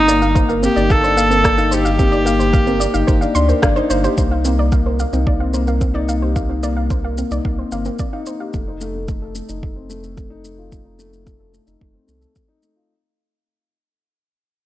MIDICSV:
0, 0, Header, 1, 6, 480
1, 0, Start_track
1, 0, Tempo, 545455
1, 1754, Time_signature, 4, 2, 24, 8
1, 12899, End_track
2, 0, Start_track
2, 0, Title_t, "Synth arpeggio sound"
2, 0, Program_c, 0, 84
2, 73, Note_on_c, 0, 74, 97
2, 121, Note_off_c, 0, 74, 0
2, 192, Note_on_c, 0, 77, 78
2, 240, Note_off_c, 0, 77, 0
2, 308, Note_on_c, 0, 72, 80
2, 390, Note_off_c, 0, 72, 0
2, 429, Note_on_c, 0, 77, 80
2, 479, Note_off_c, 0, 77, 0
2, 551, Note_on_c, 0, 60, 96
2, 600, Note_off_c, 0, 60, 0
2, 670, Note_on_c, 0, 74, 97
2, 720, Note_off_c, 0, 74, 0
2, 791, Note_on_c, 0, 77, 83
2, 840, Note_off_c, 0, 77, 0
2, 911, Note_on_c, 0, 72, 77
2, 991, Note_off_c, 0, 72, 0
2, 1030, Note_on_c, 0, 77, 78
2, 1079, Note_off_c, 0, 77, 0
2, 1149, Note_on_c, 0, 60, 102
2, 1199, Note_off_c, 0, 60, 0
2, 1268, Note_on_c, 0, 74, 107
2, 1318, Note_off_c, 0, 74, 0
2, 1387, Note_on_c, 0, 77, 79
2, 1438, Note_off_c, 0, 77, 0
2, 1506, Note_on_c, 0, 72, 80
2, 1589, Note_off_c, 0, 72, 0
2, 1627, Note_on_c, 0, 77, 85
2, 1678, Note_off_c, 0, 77, 0
2, 1750, Note_on_c, 0, 60, 105
2, 1799, Note_off_c, 0, 60, 0
2, 1866, Note_on_c, 0, 74, 107
2, 1917, Note_off_c, 0, 74, 0
2, 1989, Note_on_c, 0, 77, 74
2, 2039, Note_off_c, 0, 77, 0
2, 2108, Note_on_c, 0, 72, 76
2, 2190, Note_off_c, 0, 72, 0
2, 2227, Note_on_c, 0, 77, 86
2, 2278, Note_off_c, 0, 77, 0
2, 2348, Note_on_c, 0, 60, 107
2, 2398, Note_off_c, 0, 60, 0
2, 2464, Note_on_c, 0, 74, 95
2, 2517, Note_off_c, 0, 74, 0
2, 2586, Note_on_c, 0, 77, 78
2, 2637, Note_off_c, 0, 77, 0
2, 2704, Note_on_c, 0, 72, 87
2, 2788, Note_off_c, 0, 72, 0
2, 2826, Note_on_c, 0, 77, 78
2, 2877, Note_off_c, 0, 77, 0
2, 2947, Note_on_c, 0, 84, 101
2, 3029, Note_off_c, 0, 84, 0
2, 3068, Note_on_c, 0, 72, 78
2, 3150, Note_off_c, 0, 72, 0
2, 3188, Note_on_c, 0, 77, 102
2, 3270, Note_off_c, 0, 77, 0
2, 3309, Note_on_c, 0, 72, 111
2, 3425, Note_off_c, 0, 72, 0
2, 3434, Note_on_c, 0, 72, 114
2, 3546, Note_off_c, 0, 72, 0
2, 3556, Note_on_c, 0, 72, 103
2, 3666, Note_off_c, 0, 72, 0
2, 3676, Note_on_c, 0, 72, 80
2, 3754, Note_off_c, 0, 72, 0
2, 3797, Note_on_c, 0, 77, 77
2, 3843, Note_off_c, 0, 77, 0
2, 3919, Note_on_c, 0, 60, 91
2, 3964, Note_off_c, 0, 60, 0
2, 4040, Note_on_c, 0, 74, 96
2, 4084, Note_off_c, 0, 74, 0
2, 4160, Note_on_c, 0, 77, 82
2, 4205, Note_off_c, 0, 77, 0
2, 4277, Note_on_c, 0, 72, 79
2, 4355, Note_off_c, 0, 72, 0
2, 4397, Note_on_c, 0, 77, 71
2, 4443, Note_off_c, 0, 77, 0
2, 4517, Note_on_c, 0, 60, 97
2, 4563, Note_off_c, 0, 60, 0
2, 4636, Note_on_c, 0, 74, 96
2, 4682, Note_off_c, 0, 74, 0
2, 4755, Note_on_c, 0, 77, 72
2, 4802, Note_off_c, 0, 77, 0
2, 4876, Note_on_c, 0, 72, 68
2, 4954, Note_off_c, 0, 72, 0
2, 4997, Note_on_c, 0, 77, 70
2, 5043, Note_off_c, 0, 77, 0
2, 5114, Note_on_c, 0, 60, 91
2, 5161, Note_off_c, 0, 60, 0
2, 5234, Note_on_c, 0, 74, 103
2, 5282, Note_off_c, 0, 74, 0
2, 5355, Note_on_c, 0, 77, 77
2, 5402, Note_off_c, 0, 77, 0
2, 5477, Note_on_c, 0, 72, 70
2, 5555, Note_off_c, 0, 72, 0
2, 5595, Note_on_c, 0, 77, 82
2, 5642, Note_off_c, 0, 77, 0
2, 5715, Note_on_c, 0, 60, 97
2, 5762, Note_off_c, 0, 60, 0
2, 5837, Note_on_c, 0, 74, 91
2, 5883, Note_off_c, 0, 74, 0
2, 5954, Note_on_c, 0, 77, 66
2, 6002, Note_off_c, 0, 77, 0
2, 6080, Note_on_c, 0, 72, 75
2, 6156, Note_off_c, 0, 72, 0
2, 6199, Note_on_c, 0, 77, 77
2, 6244, Note_off_c, 0, 77, 0
2, 6321, Note_on_c, 0, 60, 90
2, 6365, Note_off_c, 0, 60, 0
2, 6439, Note_on_c, 0, 74, 93
2, 6484, Note_off_c, 0, 74, 0
2, 6558, Note_on_c, 0, 77, 77
2, 6603, Note_off_c, 0, 77, 0
2, 6676, Note_on_c, 0, 72, 68
2, 6754, Note_off_c, 0, 72, 0
2, 6794, Note_on_c, 0, 77, 72
2, 6841, Note_off_c, 0, 77, 0
2, 6915, Note_on_c, 0, 60, 103
2, 6962, Note_off_c, 0, 60, 0
2, 7037, Note_on_c, 0, 74, 93
2, 7083, Note_off_c, 0, 74, 0
2, 7155, Note_on_c, 0, 77, 79
2, 7202, Note_off_c, 0, 77, 0
2, 7275, Note_on_c, 0, 72, 77
2, 7354, Note_off_c, 0, 72, 0
2, 7395, Note_on_c, 0, 77, 74
2, 7442, Note_off_c, 0, 77, 0
2, 12899, End_track
3, 0, Start_track
3, 0, Title_t, "Viola"
3, 0, Program_c, 1, 41
3, 0, Note_on_c, 1, 63, 126
3, 280, Note_off_c, 1, 63, 0
3, 564, Note_on_c, 1, 67, 106
3, 802, Note_on_c, 1, 69, 119
3, 815, Note_off_c, 1, 67, 0
3, 1521, Note_on_c, 1, 67, 113
3, 1534, Note_off_c, 1, 69, 0
3, 3197, Note_off_c, 1, 67, 0
3, 12899, End_track
4, 0, Start_track
4, 0, Title_t, "Grand piano"
4, 0, Program_c, 2, 0
4, 0, Control_c, 2, 64, 127
4, 0, Note_on_c, 2, 63, 77
4, 71, Note_on_c, 2, 58, 107
4, 180, Note_off_c, 2, 58, 0
4, 193, Note_on_c, 2, 58, 80
4, 297, Note_off_c, 2, 58, 0
4, 310, Note_on_c, 2, 58, 86
4, 380, Note_off_c, 2, 58, 0
4, 434, Note_on_c, 2, 70, 81
4, 502, Note_off_c, 2, 70, 0
4, 552, Note_on_c, 2, 58, 80
4, 667, Note_off_c, 2, 58, 0
4, 674, Note_off_c, 2, 63, 0
4, 674, Note_on_c, 2, 63, 84
4, 742, Note_off_c, 2, 63, 0
4, 792, Note_on_c, 2, 58, 82
4, 861, Note_off_c, 2, 58, 0
4, 912, Note_on_c, 2, 62, 75
4, 1027, Note_off_c, 2, 62, 0
4, 1029, Note_on_c, 2, 58, 102
4, 1145, Note_off_c, 2, 58, 0
4, 1146, Note_on_c, 2, 70, 75
4, 1262, Note_on_c, 2, 58, 79
4, 1264, Note_off_c, 2, 70, 0
4, 1336, Note_off_c, 2, 58, 0
4, 1386, Note_on_c, 2, 63, 105
4, 1503, Note_on_c, 2, 58, 75
4, 1504, Note_off_c, 2, 63, 0
4, 1622, Note_off_c, 2, 58, 0
4, 1626, Note_on_c, 2, 67, 77
4, 1698, Note_off_c, 2, 67, 0
4, 1746, Note_on_c, 2, 58, 89
4, 1864, Note_off_c, 2, 58, 0
4, 1867, Note_on_c, 2, 63, 79
4, 1938, Note_off_c, 2, 63, 0
4, 1983, Note_on_c, 2, 58, 101
4, 2090, Note_off_c, 2, 58, 0
4, 2103, Note_on_c, 2, 58, 74
4, 2211, Note_off_c, 2, 58, 0
4, 2225, Note_on_c, 2, 58, 85
4, 2297, Note_off_c, 2, 58, 0
4, 2345, Note_on_c, 2, 70, 81
4, 2418, Note_off_c, 2, 70, 0
4, 2464, Note_on_c, 2, 58, 81
4, 2583, Note_off_c, 2, 58, 0
4, 2583, Note_on_c, 2, 63, 77
4, 2656, Note_off_c, 2, 63, 0
4, 2706, Note_on_c, 2, 58, 82
4, 2778, Note_off_c, 2, 58, 0
4, 2830, Note_on_c, 2, 62, 81
4, 2936, Note_off_c, 2, 62, 0
4, 2949, Note_on_c, 2, 62, 98
4, 3065, Note_off_c, 2, 62, 0
4, 3075, Note_on_c, 2, 70, 79
4, 3188, Note_off_c, 2, 70, 0
4, 3189, Note_on_c, 2, 62, 108
4, 3305, Note_off_c, 2, 62, 0
4, 3310, Note_on_c, 2, 63, 107
4, 3380, Note_off_c, 2, 63, 0
4, 3430, Note_on_c, 2, 58, 105
4, 3546, Note_off_c, 2, 58, 0
4, 3556, Note_on_c, 2, 67, 99
4, 3668, Note_off_c, 2, 67, 0
4, 3675, Note_on_c, 2, 58, 78
4, 3684, Control_c, 2, 64, 0
4, 3788, Note_off_c, 2, 58, 0
4, 3793, Note_on_c, 2, 63, 75
4, 3862, Note_off_c, 2, 63, 0
4, 3865, Control_c, 2, 64, 127
4, 3911, Note_on_c, 2, 58, 90
4, 4022, Note_off_c, 2, 58, 0
4, 4035, Note_on_c, 2, 58, 65
4, 4140, Note_off_c, 2, 58, 0
4, 4153, Note_on_c, 2, 58, 77
4, 4222, Note_off_c, 2, 58, 0
4, 4274, Note_on_c, 2, 70, 70
4, 4342, Note_off_c, 2, 70, 0
4, 4393, Note_on_c, 2, 58, 72
4, 4507, Note_off_c, 2, 58, 0
4, 4512, Note_on_c, 2, 63, 73
4, 4581, Note_off_c, 2, 63, 0
4, 4632, Note_on_c, 2, 58, 75
4, 4701, Note_off_c, 2, 58, 0
4, 4749, Note_on_c, 2, 60, 76
4, 4865, Note_off_c, 2, 60, 0
4, 4869, Note_on_c, 2, 58, 92
4, 4985, Note_off_c, 2, 58, 0
4, 4989, Note_on_c, 2, 70, 66
4, 5105, Note_off_c, 2, 70, 0
4, 5108, Note_on_c, 2, 58, 77
4, 5179, Note_off_c, 2, 58, 0
4, 5227, Note_on_c, 2, 63, 100
4, 5344, Note_off_c, 2, 63, 0
4, 5349, Note_on_c, 2, 58, 67
4, 5465, Note_off_c, 2, 58, 0
4, 5472, Note_on_c, 2, 67, 67
4, 5541, Note_off_c, 2, 67, 0
4, 5589, Note_on_c, 2, 58, 74
4, 5705, Note_off_c, 2, 58, 0
4, 5713, Note_on_c, 2, 63, 71
4, 5782, Note_off_c, 2, 63, 0
4, 5834, Note_on_c, 2, 58, 95
4, 5942, Note_off_c, 2, 58, 0
4, 5955, Note_on_c, 2, 58, 66
4, 6060, Note_off_c, 2, 58, 0
4, 6073, Note_on_c, 2, 58, 78
4, 6142, Note_off_c, 2, 58, 0
4, 6192, Note_on_c, 2, 70, 64
4, 6261, Note_off_c, 2, 70, 0
4, 6314, Note_on_c, 2, 58, 67
4, 6428, Note_off_c, 2, 58, 0
4, 6434, Note_on_c, 2, 63, 70
4, 6502, Note_off_c, 2, 63, 0
4, 6556, Note_on_c, 2, 58, 70
4, 6623, Note_off_c, 2, 58, 0
4, 6673, Note_on_c, 2, 60, 72
4, 6787, Note_off_c, 2, 60, 0
4, 6795, Note_on_c, 2, 58, 88
4, 6908, Note_off_c, 2, 58, 0
4, 6912, Note_on_c, 2, 70, 66
4, 7027, Note_off_c, 2, 70, 0
4, 7035, Note_on_c, 2, 58, 70
4, 7102, Note_off_c, 2, 58, 0
4, 7152, Note_on_c, 2, 63, 91
4, 7267, Note_off_c, 2, 63, 0
4, 7274, Note_on_c, 2, 58, 68
4, 7388, Note_off_c, 2, 58, 0
4, 7391, Note_on_c, 2, 67, 62
4, 7460, Note_off_c, 2, 67, 0
4, 7514, Note_on_c, 2, 57, 69
4, 7524, Control_c, 2, 64, 0
4, 7628, Note_off_c, 2, 57, 0
4, 7635, Note_on_c, 2, 63, 68
4, 7695, Control_c, 2, 64, 127
4, 7702, Note_off_c, 2, 63, 0
4, 7751, Note_on_c, 2, 57, 87
4, 7860, Note_off_c, 2, 57, 0
4, 7873, Note_on_c, 2, 57, 66
4, 7981, Note_off_c, 2, 57, 0
4, 7994, Note_on_c, 2, 57, 70
4, 8062, Note_off_c, 2, 57, 0
4, 8113, Note_on_c, 2, 69, 67
4, 8181, Note_off_c, 2, 69, 0
4, 8226, Note_on_c, 2, 57, 70
4, 8344, Note_off_c, 2, 57, 0
4, 8349, Note_on_c, 2, 63, 70
4, 8420, Note_off_c, 2, 63, 0
4, 8468, Note_on_c, 2, 57, 68
4, 8539, Note_off_c, 2, 57, 0
4, 8586, Note_on_c, 2, 60, 66
4, 8704, Note_off_c, 2, 60, 0
4, 8708, Note_on_c, 2, 57, 83
4, 8825, Note_off_c, 2, 57, 0
4, 8832, Note_on_c, 2, 69, 63
4, 8947, Note_off_c, 2, 69, 0
4, 8948, Note_on_c, 2, 57, 71
4, 9019, Note_off_c, 2, 57, 0
4, 9067, Note_on_c, 2, 63, 84
4, 9184, Note_off_c, 2, 63, 0
4, 9192, Note_on_c, 2, 57, 67
4, 9307, Note_off_c, 2, 57, 0
4, 9314, Note_on_c, 2, 65, 63
4, 9382, Note_off_c, 2, 65, 0
4, 9431, Note_on_c, 2, 57, 67
4, 9546, Note_off_c, 2, 57, 0
4, 9549, Note_on_c, 2, 63, 64
4, 9619, Note_off_c, 2, 63, 0
4, 9669, Note_on_c, 2, 57, 84
4, 9776, Note_off_c, 2, 57, 0
4, 9789, Note_on_c, 2, 57, 63
4, 9894, Note_off_c, 2, 57, 0
4, 9907, Note_on_c, 2, 57, 70
4, 9979, Note_off_c, 2, 57, 0
4, 10028, Note_on_c, 2, 69, 61
4, 10099, Note_off_c, 2, 69, 0
4, 10148, Note_on_c, 2, 57, 68
4, 10265, Note_off_c, 2, 57, 0
4, 10268, Note_on_c, 2, 63, 63
4, 10339, Note_off_c, 2, 63, 0
4, 10388, Note_on_c, 2, 57, 67
4, 10459, Note_off_c, 2, 57, 0
4, 10506, Note_on_c, 2, 60, 61
4, 10623, Note_off_c, 2, 60, 0
4, 10625, Note_on_c, 2, 57, 78
4, 10743, Note_off_c, 2, 57, 0
4, 10745, Note_on_c, 2, 69, 61
4, 10863, Note_off_c, 2, 69, 0
4, 10864, Note_on_c, 2, 57, 60
4, 10937, Note_off_c, 2, 57, 0
4, 10985, Note_on_c, 2, 63, 82
4, 11103, Note_off_c, 2, 63, 0
4, 11109, Note_on_c, 2, 57, 63
4, 11225, Note_off_c, 2, 57, 0
4, 11230, Note_on_c, 2, 65, 59
4, 11300, Note_off_c, 2, 65, 0
4, 11365, Control_c, 2, 64, 0
4, 12899, End_track
5, 0, Start_track
5, 0, Title_t, "Sub bass"
5, 0, Program_c, 3, 38
5, 0, Note_on_c, 3, 31, 101
5, 603, Note_off_c, 3, 31, 0
5, 674, Note_on_c, 3, 31, 79
5, 2524, Note_off_c, 3, 31, 0
5, 2594, Note_on_c, 3, 31, 83
5, 2670, Note_off_c, 3, 31, 0
5, 2711, Note_on_c, 3, 31, 94
5, 2864, Note_off_c, 3, 31, 0
5, 2950, Note_on_c, 3, 38, 100
5, 3104, Note_off_c, 3, 38, 0
5, 3194, Note_on_c, 3, 31, 108
5, 3346, Note_off_c, 3, 31, 0
5, 3434, Note_on_c, 3, 31, 101
5, 3586, Note_off_c, 3, 31, 0
5, 3674, Note_on_c, 3, 36, 96
5, 4443, Note_off_c, 3, 36, 0
5, 4515, Note_on_c, 3, 36, 76
5, 6364, Note_off_c, 3, 36, 0
5, 6436, Note_on_c, 3, 36, 76
5, 6511, Note_off_c, 3, 36, 0
5, 6554, Note_on_c, 3, 36, 86
5, 6706, Note_off_c, 3, 36, 0
5, 6796, Note_on_c, 3, 31, 97
5, 6947, Note_off_c, 3, 31, 0
5, 7514, Note_on_c, 3, 29, 85
5, 8283, Note_off_c, 3, 29, 0
5, 8356, Note_on_c, 3, 29, 73
5, 10205, Note_off_c, 3, 29, 0
5, 10276, Note_on_c, 3, 29, 71
5, 10351, Note_off_c, 3, 29, 0
5, 10395, Note_on_c, 3, 29, 83
5, 10546, Note_off_c, 3, 29, 0
5, 10635, Note_on_c, 3, 36, 94
5, 10786, Note_off_c, 3, 36, 0
5, 12899, End_track
6, 0, Start_track
6, 0, Title_t, "Drums"
6, 76, Note_on_c, 9, 82, 78
6, 164, Note_off_c, 9, 82, 0
6, 195, Note_on_c, 9, 82, 32
6, 283, Note_off_c, 9, 82, 0
6, 314, Note_on_c, 9, 36, 104
6, 315, Note_on_c, 9, 82, 43
6, 402, Note_off_c, 9, 36, 0
6, 403, Note_off_c, 9, 82, 0
6, 435, Note_on_c, 9, 82, 20
6, 523, Note_off_c, 9, 82, 0
6, 556, Note_on_c, 9, 82, 67
6, 644, Note_off_c, 9, 82, 0
6, 677, Note_on_c, 9, 82, 27
6, 765, Note_off_c, 9, 82, 0
6, 793, Note_on_c, 9, 36, 101
6, 797, Note_on_c, 9, 82, 39
6, 881, Note_off_c, 9, 36, 0
6, 885, Note_off_c, 9, 82, 0
6, 917, Note_on_c, 9, 82, 20
6, 1005, Note_off_c, 9, 82, 0
6, 1036, Note_on_c, 9, 82, 73
6, 1124, Note_off_c, 9, 82, 0
6, 1156, Note_on_c, 9, 82, 31
6, 1244, Note_off_c, 9, 82, 0
6, 1272, Note_on_c, 9, 36, 99
6, 1275, Note_on_c, 9, 37, 76
6, 1275, Note_on_c, 9, 82, 46
6, 1360, Note_off_c, 9, 36, 0
6, 1363, Note_off_c, 9, 37, 0
6, 1363, Note_off_c, 9, 82, 0
6, 1392, Note_on_c, 9, 82, 21
6, 1480, Note_off_c, 9, 82, 0
6, 1512, Note_on_c, 9, 82, 72
6, 1600, Note_off_c, 9, 82, 0
6, 1632, Note_on_c, 9, 82, 31
6, 1720, Note_off_c, 9, 82, 0
6, 1751, Note_on_c, 9, 82, 46
6, 1752, Note_on_c, 9, 36, 104
6, 1839, Note_off_c, 9, 82, 0
6, 1840, Note_off_c, 9, 36, 0
6, 1872, Note_on_c, 9, 82, 20
6, 1960, Note_off_c, 9, 82, 0
6, 1994, Note_on_c, 9, 82, 74
6, 2082, Note_off_c, 9, 82, 0
6, 2114, Note_on_c, 9, 82, 32
6, 2202, Note_off_c, 9, 82, 0
6, 2231, Note_on_c, 9, 36, 112
6, 2233, Note_on_c, 9, 82, 41
6, 2319, Note_off_c, 9, 36, 0
6, 2321, Note_off_c, 9, 82, 0
6, 2350, Note_on_c, 9, 82, 20
6, 2438, Note_off_c, 9, 82, 0
6, 2470, Note_on_c, 9, 82, 67
6, 2558, Note_off_c, 9, 82, 0
6, 2589, Note_on_c, 9, 82, 29
6, 2677, Note_off_c, 9, 82, 0
6, 2710, Note_on_c, 9, 82, 43
6, 2711, Note_on_c, 9, 36, 109
6, 2798, Note_off_c, 9, 82, 0
6, 2799, Note_off_c, 9, 36, 0
6, 2833, Note_on_c, 9, 82, 22
6, 2921, Note_off_c, 9, 82, 0
6, 2950, Note_on_c, 9, 82, 73
6, 3038, Note_off_c, 9, 82, 0
6, 3073, Note_on_c, 9, 82, 33
6, 3161, Note_off_c, 9, 82, 0
6, 3193, Note_on_c, 9, 36, 108
6, 3194, Note_on_c, 9, 37, 77
6, 3194, Note_on_c, 9, 82, 43
6, 3281, Note_off_c, 9, 36, 0
6, 3282, Note_off_c, 9, 37, 0
6, 3282, Note_off_c, 9, 82, 0
6, 3315, Note_on_c, 9, 82, 21
6, 3403, Note_off_c, 9, 82, 0
6, 3434, Note_on_c, 9, 82, 77
6, 3522, Note_off_c, 9, 82, 0
6, 3556, Note_on_c, 9, 82, 30
6, 3644, Note_off_c, 9, 82, 0
6, 3675, Note_on_c, 9, 82, 42
6, 3676, Note_on_c, 9, 36, 93
6, 3763, Note_off_c, 9, 82, 0
6, 3764, Note_off_c, 9, 36, 0
6, 3915, Note_on_c, 9, 82, 59
6, 4003, Note_off_c, 9, 82, 0
6, 4154, Note_on_c, 9, 82, 40
6, 4155, Note_on_c, 9, 36, 102
6, 4242, Note_off_c, 9, 82, 0
6, 4243, Note_off_c, 9, 36, 0
6, 4395, Note_on_c, 9, 82, 52
6, 4483, Note_off_c, 9, 82, 0
6, 4516, Note_on_c, 9, 82, 36
6, 4604, Note_off_c, 9, 82, 0
6, 4635, Note_on_c, 9, 36, 101
6, 4723, Note_off_c, 9, 36, 0
6, 4873, Note_on_c, 9, 82, 53
6, 4961, Note_off_c, 9, 82, 0
6, 4993, Note_on_c, 9, 82, 26
6, 5081, Note_off_c, 9, 82, 0
6, 5114, Note_on_c, 9, 82, 43
6, 5115, Note_on_c, 9, 36, 89
6, 5202, Note_off_c, 9, 82, 0
6, 5203, Note_off_c, 9, 36, 0
6, 5356, Note_on_c, 9, 82, 58
6, 5444, Note_off_c, 9, 82, 0
6, 5596, Note_on_c, 9, 36, 101
6, 5597, Note_on_c, 9, 82, 39
6, 5684, Note_off_c, 9, 36, 0
6, 5685, Note_off_c, 9, 82, 0
6, 5835, Note_on_c, 9, 82, 58
6, 5923, Note_off_c, 9, 82, 0
6, 6075, Note_on_c, 9, 36, 97
6, 6076, Note_on_c, 9, 82, 42
6, 6163, Note_off_c, 9, 36, 0
6, 6164, Note_off_c, 9, 82, 0
6, 6315, Note_on_c, 9, 82, 58
6, 6403, Note_off_c, 9, 82, 0
6, 6435, Note_on_c, 9, 82, 38
6, 6523, Note_off_c, 9, 82, 0
6, 6555, Note_on_c, 9, 36, 101
6, 6643, Note_off_c, 9, 36, 0
6, 6791, Note_on_c, 9, 82, 55
6, 6879, Note_off_c, 9, 82, 0
6, 6909, Note_on_c, 9, 82, 27
6, 6997, Note_off_c, 9, 82, 0
6, 7029, Note_on_c, 9, 82, 39
6, 7034, Note_on_c, 9, 36, 98
6, 7117, Note_off_c, 9, 82, 0
6, 7122, Note_off_c, 9, 36, 0
6, 7270, Note_on_c, 9, 82, 60
6, 7358, Note_off_c, 9, 82, 0
6, 7511, Note_on_c, 9, 82, 39
6, 7514, Note_on_c, 9, 36, 93
6, 7599, Note_off_c, 9, 82, 0
6, 7602, Note_off_c, 9, 36, 0
6, 7752, Note_on_c, 9, 82, 62
6, 7840, Note_off_c, 9, 82, 0
6, 7993, Note_on_c, 9, 82, 38
6, 7994, Note_on_c, 9, 36, 102
6, 8081, Note_off_c, 9, 82, 0
6, 8082, Note_off_c, 9, 36, 0
6, 8230, Note_on_c, 9, 82, 55
6, 8318, Note_off_c, 9, 82, 0
6, 8350, Note_on_c, 9, 82, 33
6, 8438, Note_off_c, 9, 82, 0
6, 8474, Note_on_c, 9, 36, 94
6, 8562, Note_off_c, 9, 36, 0
6, 8712, Note_on_c, 9, 82, 51
6, 8800, Note_off_c, 9, 82, 0
6, 8832, Note_on_c, 9, 82, 27
6, 8920, Note_off_c, 9, 82, 0
6, 8954, Note_on_c, 9, 36, 94
6, 8954, Note_on_c, 9, 82, 39
6, 9042, Note_off_c, 9, 36, 0
6, 9042, Note_off_c, 9, 82, 0
6, 9193, Note_on_c, 9, 82, 57
6, 9281, Note_off_c, 9, 82, 0
6, 9435, Note_on_c, 9, 36, 86
6, 9435, Note_on_c, 9, 82, 37
6, 9523, Note_off_c, 9, 36, 0
6, 9523, Note_off_c, 9, 82, 0
6, 9674, Note_on_c, 9, 82, 56
6, 9762, Note_off_c, 9, 82, 0
6, 9797, Note_on_c, 9, 82, 25
6, 9885, Note_off_c, 9, 82, 0
6, 9915, Note_on_c, 9, 36, 96
6, 9915, Note_on_c, 9, 82, 38
6, 10003, Note_off_c, 9, 36, 0
6, 10003, Note_off_c, 9, 82, 0
6, 10155, Note_on_c, 9, 82, 48
6, 10243, Note_off_c, 9, 82, 0
6, 10272, Note_on_c, 9, 82, 35
6, 10360, Note_off_c, 9, 82, 0
6, 10396, Note_on_c, 9, 36, 88
6, 10484, Note_off_c, 9, 36, 0
6, 10633, Note_on_c, 9, 82, 48
6, 10721, Note_off_c, 9, 82, 0
6, 10752, Note_on_c, 9, 82, 24
6, 10840, Note_off_c, 9, 82, 0
6, 10873, Note_on_c, 9, 82, 38
6, 10875, Note_on_c, 9, 36, 82
6, 10961, Note_off_c, 9, 82, 0
6, 10963, Note_off_c, 9, 36, 0
6, 11110, Note_on_c, 9, 82, 54
6, 11198, Note_off_c, 9, 82, 0
6, 12899, End_track
0, 0, End_of_file